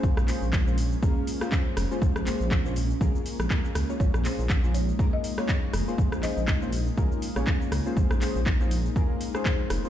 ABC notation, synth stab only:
X:1
M:4/4
L:1/16
Q:"Swing 16ths" 1/4=121
K:Bbm
V:1 name="Synth stab"
[B,DFAc]2 [B,DFAc] z2 [B,DFAc] z2 [B,DFAB]3 [B,DFAc]4 [B,DFAc]- | [B,DFAc]2 [B,DFAc] z2 [B,DFAc] z2 [B,DFAB]3 z [B,DFAB]3 [B,DFAd]- | [B,DFAd]2 [B,DFAc] z2 [B,DFAc] z2 [B,DFAB]3 [B,DFAd]4 [B,DFAc]- | [B,DFAc]2 [B,DFAc] z2 [B,DFAc] z2 [B,DFAB]3 [B,DFAd]4 [B,DFAc]- |
[B,DFAc]2 [B,DFAc] z2 [B,DFAc] z2 [B,DFAB]3 [B,DFAc]4 [B,DFAc] |]